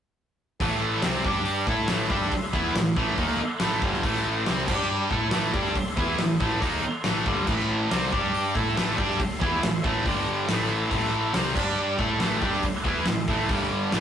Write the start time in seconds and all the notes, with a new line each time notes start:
0.60 A1 A2 E3 A3 A4 E5 C6, kick, open hi-hat
0.71 snare
1.02 C2 C3 G3 C4, snare, open hi-hat
1.22 G2 G3 D4 G4 D5 D6, kick
1.45 open hi-hat
1.67 A2 A3 E4 A4 E5 C6, kick
1.88 A1 A2 E3 A3, snare, open hi-hat
2.10 G2 G3 D4 G4, kick
2.21 snare
2.32 muted distorted electric guitar stroke, kick, open hi-hat
2.53 E2 E3 B3 E4, kick
2.75 A1 A2 E3, snare, open hi-hat
2.96 A1 A2 E3 A3, kick
3.18 D#2 D#3 A#3 D#4, kick, open hi-hat
3.40 muted distorted electric guitar stroke, muted picked electric bass stroke
3.60 A1 A2 E3 A3, snare, open hi-hat
3.82 G1 G2 D3 G3, kick
3.93 snare
4.03 A1 A2 E3 A3, kick, open hi-hat
4.14 snare
4.46 C2 C3 G3 C4, snare, open hi-hat
4.68 G2 G3 D4 G4 D5 D6, kick, crash
5.10 A2 A3 E4 A4 E5 C6, kick
5.31 A1 A2 E3 A3, snare, open hi-hat
5.53 G2 G3 D4 G4, kick
5.65 snare
5.75 muted distorted electric guitar stroke, muted picked electric bass stroke, kick, open hi-hat
5.97 E2 E3 B3 E4, kick
6.19 A1 A2 E3, snare, open hi-hat
6.40 A1 A2 E3 A3, kick
6.61 D#2 D#3 A#3 D#4, kick, open hi-hat
6.83 muted picked electric bass stroke, muted distorted electric guitar stroke
7.04 A1 A2 E3 A3, snare, open hi-hat
7.26 G1 G2 D3 G3, kick
7.47 A1 A2 E3 A3, kick, crash
7.59 snare
7.91 C2 C3 G3 C4, snare, open hi-hat
8.12 G2 G3 D4 G4 D5 D6, kick
8.35 open hi-hat
8.54 A2 A3 E4 A4 E5 C6, kick
8.77 A1 A2 E3 A3, snare, open hi-hat
8.98 G2 G3 D4 G4, kick
9.10 snare
9.20 muted picked electric bass stroke, muted distorted electric guitar stroke, kick, open hi-hat
9.32 snare
9.42 E2 E3 B3 E4, kick
9.62 A1 A2 E3, snare, open hi-hat
9.84 A1 A2 E3 A3, kick
10.04 G1 G2 D3 G3 G4 D5 D6, kick, open hi-hat
10.47 A1 A2 E3 A3 A4 E5 C6, snare, open hi-hat
10.91 A1 A2 E3 A3, kick, open hi-hat
11.02 snare
11.33 C2 C3 G3 C4, snare, open hi-hat
11.55 G2 G3 D4 G4 D5 D6, kick, crash
11.97 A2 A3 E4 A4 E5 C6, kick
12.19 A1 A2 E3 A3, snare, open hi-hat
12.40 G2 G3 D4 G4, kick
12.52 snare
12.63 muted picked electric bass stroke, muted distorted electric guitar stroke, kick, open hi-hat
12.84 E2 E3 B3 E4, kick
13.06 A1 A2 E3, snare, open hi-hat
13.28 A1 A2 E3 A3, kick
13.49 G1 G2 D3 G3 G4 D5 D6, kick, open hi-hat
13.92 A1 A2 E3 A3 A4 E5 C6, snare, open hi-hat